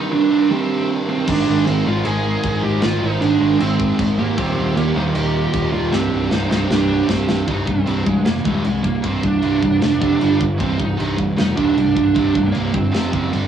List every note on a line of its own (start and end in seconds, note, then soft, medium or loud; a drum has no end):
0.00 0.29 C2 loud
0.00 0.30 G2 loud
0.00 0.29 C3 loud
0.00 1.25 C3 medium
0.00 4.34 D#3 loud
0.00 1.25 G3 medium
0.00 1.25 D4 medium
0.00 0.12 D#4 medium
0.13 0.51 D4 medium
0.30 1.26 C2 medium
0.30 1.27 G2 medium
0.30 1.26 C3 medium
0.51 0.87 C4 loud
0.51 0.86 G4 medium
1.09 1.29 C4 loud
1.09 1.27 G#4 medium
1.26 1.43 G#1 loud
1.26 1.88 G#2 medium
1.26 1.85 D#3 loud
1.26 4.34 G#3 medium
1.26 1.85 G#3 loud
1.26 1.66 D4 loud
1.26 1.66 G#4 medium
1.26 4.34 A#4 medium
1.26 4.34 C5 medium
1.26 kick loud
1.26 crash loud
1.26 china medium
1.48 1.62 G#1 medium
1.66 1.82 G#1 loud
1.66 1.86 C4 loud
1.66 1.85 G#4 medium
1.66 china medium
1.85 2.01 G#1 medium
1.85 2.79 G#2 medium
1.85 2.81 D#3 medium
1.85 2.81 G#3 medium
1.85 2.05 F4 medium
1.85 2.06 D5 medium
2.05 2.35 G#1 loud
2.05 2.63 G#4 loud
2.05 2.63 D#5 medium
2.05 china medium
2.43 2.59 G#1 loud
2.43 kick loud
2.43 china medium
2.63 2.78 G#1 medium
2.63 2.83 G4 loud
2.63 2.82 D#5 medium
2.80 2.98 G#1 loud
2.80 3.38 G#2 loud
2.80 3.39 D#3 loud
2.80 3.38 G#3 loud
2.80 3.03 F4 loud
2.80 3.00 C5 medium
2.80 snare loud
2.80 china medium
3.02 3.17 G#1 medium
3.02 3.21 D#4 loud
3.02 3.20 C5 medium
3.21 3.36 G#1 loud
3.21 3.57 D4 medium
3.21 3.58 G#4 medium
3.21 china medium
3.39 3.56 G#1 medium
3.39 4.35 G#2 medium
3.39 4.37 D#3 medium
3.39 4.36 G#3 medium
3.59 3.90 G#1 loud
3.59 3.96 C4 loud
3.59 3.96 G#4 medium
3.59 china medium
3.80 kick loud
3.99 4.14 G#1 loud
3.99 kick medium
3.99 china medium
4.18 4.34 G#1 medium
4.18 4.37 A#3 medium
4.18 4.37 G4 medium
4.36 4.53 D#1 loud
4.36 4.94 D#2 loud
4.36 4.94 A#2 loud
4.36 5.90 D#3 medium
4.36 4.93 D#3 loud
4.36 5.90 A#3 medium
4.36 4.75 C4 loud
4.36 5.91 F4 medium
4.36 5.91 G4 medium
4.36 4.75 G4 medium
4.36 kick loud
4.36 china medium
4.57 4.72 D#1 medium
4.76 4.91 D#1 loud
4.76 4.96 A#3 medium
4.76 4.95 G4 medium
4.76 china medium
4.94 5.11 D#1 loud
4.94 5.90 D#2 medium
4.94 5.92 A#2 medium
4.94 5.91 D#3 loud
4.94 5.01 D#4 medium
4.94 5.02 C5 medium
5.15 5.45 D#1 medium
5.15 5.70 G4 loud
5.15 5.70 D#5 medium
5.15 china medium
5.54 5.69 D#1 loud
5.54 kick medium
5.54 china medium
5.72 5.88 D#1 medium
5.72 5.93 F4 loud
5.72 5.92 D5 medium
5.91 6.07 C1 loud
5.91 6.49 C2 loud
5.91 6.50 G2 loud
5.91 7.47 C3 medium
5.91 6.49 C3 loud
5.91 7.47 D#3 medium
5.91 7.46 G3 medium
5.91 6.30 C4 loud
5.91 7.47 D4 medium
5.91 6.29 G4 medium
5.91 snare medium
6.13 6.28 C1 medium
6.31 6.46 C1 medium
6.31 6.49 D#4 loud
6.31 6.50 C5 medium
6.31 snare medium
6.50 6.66 C1 medium
6.50 7.46 C2 medium
6.50 7.47 G2 medium
6.50 7.46 C3 loud
6.50 6.69 D#4 medium
6.50 6.71 C5 medium
6.50 snare medium
6.69 7.01 C1 loud
6.69 7.07 D4 loud
6.69 7.08 G4 medium
6.69 snare loud
7.08 7.24 C1 loud
7.08 7.36 C4 medium
7.08 7.36 G4 medium
7.08 kick medium
7.08 snare loud
7.29 7.44 C1 medium
7.29 snare loud
7.47 7.65 C1 medium
7.47 7.65 C2 medium
7.47 7.65 G2 loud
7.47 7.67 C3 loud
7.47 7.68 D#4 loud
7.47 kick loud
7.47 china medium
7.66 7.84 C1 medium
7.66 7.85 C2 medium
7.66 7.85 G2 medium
7.66 8.07 C4 loud
7.66 kick medium
7.86 8.04 C1 medium
7.86 8.04 C2 medium
7.86 8.05 G2 medium
7.86 8.05 C3 loud
7.86 china medium
8.05 8.23 C1 medium
8.05 8.24 C2 medium
8.05 8.24 G2 medium
8.05 8.24 G#3 medium
8.05 kick medium
8.25 8.43 F1 medium
8.25 8.43 C2 medium
8.25 8.43 G2 medium
8.25 8.45 A#3 loud
8.25 snare loud
8.25 china medium
8.44 8.62 D#1 medium
8.44 8.62 C2 medium
8.44 8.63 G2 loud
8.44 8.64 C3 loud
8.44 8.83 G#3 medium
8.44 kick medium
8.64 8.82 C2 medium
8.64 8.82 G2 medium
8.64 china medium
8.83 9.01 C1 medium
8.83 9.02 C2 medium
8.83 9.02 G2 medium
8.83 9.02 A#3 medium
8.83 kick medium
9.03 9.20 C1 loud
9.03 9.21 C2 medium
9.03 9.22 G2 loud
9.03 9.23 C3 medium
9.03 9.24 C4 loud
9.03 kick loud
9.03 china medium
9.22 9.40 C1 medium
9.22 9.41 C2 medium
9.22 9.41 G2 medium
9.22 10.41 D4 loud
9.22 kick medium
9.42 9.60 C1 loud
9.42 9.60 C2 medium
9.42 9.61 G2 medium
9.42 9.61 C3 medium
9.42 china medium
9.61 9.79 C1 medium
9.61 9.79 C2 medium
9.61 9.80 G2 medium
9.61 kick medium
9.81 9.99 F1 medium
9.81 9.99 C2 medium
9.81 9.99 G2 medium
9.81 snare loud
9.81 china medium
10.00 10.18 F1 medium
10.00 10.19 C2 loud
10.00 10.19 G2 loud
10.00 10.20 C3 loud
10.00 kick medium
10.20 10.38 G1 medium
10.20 10.39 G2 medium
10.20 10.39 D3 loud
10.20 10.40 G3 loud
10.20 china medium
10.40 10.57 G1 medium
10.40 10.58 G2 medium
10.40 10.58 D3 medium
10.40 kick medium
10.58 10.77 C1 loud
10.58 10.77 C2 medium
10.58 10.77 G2 loud
10.58 10.78 C3 loud
10.58 10.80 C4 loud
10.58 kick loud
10.58 china medium
10.78 10.96 C1 medium
10.78 10.96 C2 medium
10.78 10.97 G2 medium
10.78 11.16 D#4 loud
10.78 kick medium
10.98 11.16 C1 medium
10.98 11.17 C2 medium
10.98 11.17 G2 medium
10.98 11.17 C3 loud
10.98 china medium
11.18 11.35 C1 medium
11.18 11.36 C2 medium
11.18 11.36 G2 medium
11.18 kick medium
11.37 11.55 F1 loud
11.37 11.55 C2 medium
11.37 11.55 G2 medium
11.37 11.56 D#4 loud
11.37 snare loud
11.37 china medium
11.57 11.74 D#1 medium
11.57 11.74 C2 loud
11.57 11.74 G2 loud
11.57 11.76 C3 loud
11.57 11.95 D4 loud
11.57 kick medium
11.75 11.93 C2 medium
11.75 11.94 C2 medium
11.75 11.94 G2 medium
11.75 china medium
11.96 12.13 C1 medium
11.96 12.13 C2 medium
11.96 12.14 G2 medium
11.96 12.47 D4 loud
11.96 kick medium
12.14 12.33 C1 loud
12.14 12.33 C2 medium
12.14 12.34 G2 medium
12.14 12.34 C3 loud
12.14 kick loud
12.14 china medium
12.34 12.52 C1 medium
12.34 12.51 C2 medium
12.34 12.52 G2 medium
12.34 kick medium
12.46 12.75 A#3 medium
12.52 12.72 C1 medium
12.52 12.71 C2 medium
12.52 12.71 G2 medium
12.52 12.73 C3 loud
12.52 china medium
12.72 12.91 G1 medium
12.72 12.91 C2 medium
12.72 12.91 G2 medium
12.72 12.93 C4 medium
12.72 kick medium
12.92 13.11 F1 medium
12.92 13.11 F2 loud
12.92 13.11 C3 loud
12.92 13.12 F3 loud
12.92 13.30 C4 medium
12.92 snare loud
12.92 china medium
13.12 13.30 F#1 medium
13.12 13.31 F2 loud
13.12 13.31 C3 loud
13.12 13.32 F3 loud
13.12 kick medium
13.31 13.47 G1 medium
13.31 13.47 G2 medium
13.31 13.47 D3 loud
13.31 13.47 G3 loud
13.31 china medium